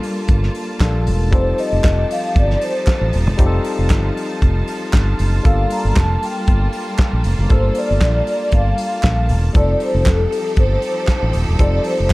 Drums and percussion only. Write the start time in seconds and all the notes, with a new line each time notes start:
0.03 open hi-hat
0.28 kick, closed hi-hat
0.43 snare
0.55 open hi-hat
0.80 kick, snare, clap, closed hi-hat
1.07 open hi-hat
1.33 kick, closed hi-hat
1.58 open hi-hat
1.84 kick, snare, clap, closed hi-hat
2.11 open hi-hat
2.36 kick, closed hi-hat
2.50 snare
2.61 open hi-hat
2.87 kick, snare, clap, closed hi-hat
3.13 open hi-hat
3.38 kick, closed hi-hat
3.64 open hi-hat
3.90 kick, snare, clap, closed hi-hat
4.17 open hi-hat
4.42 kick, closed hi-hat
4.68 open hi-hat
4.93 kick, snare, clap, closed hi-hat
5.19 open hi-hat
5.45 kick, closed hi-hat
5.70 open hi-hat
5.96 kick, snare, clap, closed hi-hat
6.23 open hi-hat
6.47 kick, closed hi-hat
6.73 open hi-hat
6.98 kick, snare, clap, closed hi-hat
7.24 open hi-hat
7.50 kick, closed hi-hat
7.75 open hi-hat
8.01 kick, snare, clap, closed hi-hat
8.27 open hi-hat
8.52 kick, closed hi-hat
8.78 open hi-hat
9.03 kick, snare, clap, closed hi-hat
9.29 open hi-hat
9.55 kick, closed hi-hat
9.80 open hi-hat
10.06 kick, snare, clap, closed hi-hat
10.32 open hi-hat
10.57 kick, closed hi-hat
10.82 open hi-hat
11.07 kick, snare, clap, closed hi-hat
11.33 open hi-hat
11.59 kick, closed hi-hat
11.84 open hi-hat